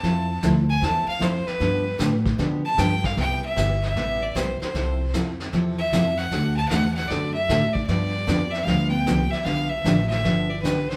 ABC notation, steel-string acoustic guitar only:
X:1
M:4/4
L:1/8
Q:"Swing" 1/4=153
K:C
V:1 name="Steel-string acoustic guitar"
[F,CEA] z [F,CEA] z [F,CEA] z [F,CEA] z | [D,F,B,DG] z [D,F,B,DG] z [D,F,B,DG] z [D,F,B,DG] z | [C,G,B,EG] z [C,G,B,EG] z [C,G,B,EG] z [C,G,B,EG] z | [C,F,CEA] z [C,F,CEA] z [C,F,CEA] z [C,F,CEA] z |
[D,A,C^FA] z [D,A,CFA] z [D,A,CFA] z [D,A,CFA] z | [D,F,B,DG] z [D,F,B,DG] z [D,F,B,DG] z [D,F,B,DG] z | [D,F,B,DG] z [D,F,B,DG] z [D,F,B,DG] z [D,F,B,DG] z |]